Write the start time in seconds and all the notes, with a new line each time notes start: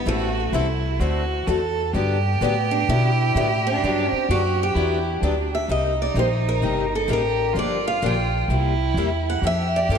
0.06 A1 E3 G3 A3 C4 E4 F#4 A4
0.52 C2 E3 G3 C4 E4 A4
0.99 D2 D3 A3 C4 F#4 A4
1.46 E2 D3 A3 C4 F#4 A4
1.93 G2 D3 F#3 B3 D4 G4
2.41 A2 D3 F#3 B3 D4 G4
2.71 D4
2.88 B2 D3 F#3 B3 D4 E4 G4
3.35 A2 D3 F#3 B3 D4 E4 G4
3.67 D4
3.82 G2 D3 F#3 B3 D4 G4
4.11 C4, muted upright bass stroke
4.28 F#2 D3 F#3 B3 D4 F#4 G4
4.63 G4
4.75 E2 D3 F#3 B3 D4 E4 G4
5.20 D2 D3 F#3 B3 D4 G4
5.55 E5
5.68 C2 C3 G3 A#3 D#4 G4 D#5
6.02 D5
6.14 A#1 C3 G3 A#3 D#4 G4
6.19 C5
6.49 A#4
6.61 G1 C3 G3 A#3 D#4 G4
6.95 A4
7.08 A1 C3 G3 A#3 D#4 G4
7.13 A#4
7.53 G1 D3 F3 A#3 D4 F4 G4
7.59 D5
7.88 F5
8.02 A#1 D3 F3 A#3 D4 G4
8.06 G5
8.48 C2 C3 G3 A#3 E4 G4
8.94 E2 C3 G3 A#3
8.98 E4 G4
9.30 F#5
9.41 F2 F3 C4 E4 G4 A4
9.47 E5
9.76 D5
9.88 G2 F3 C4 E4 A4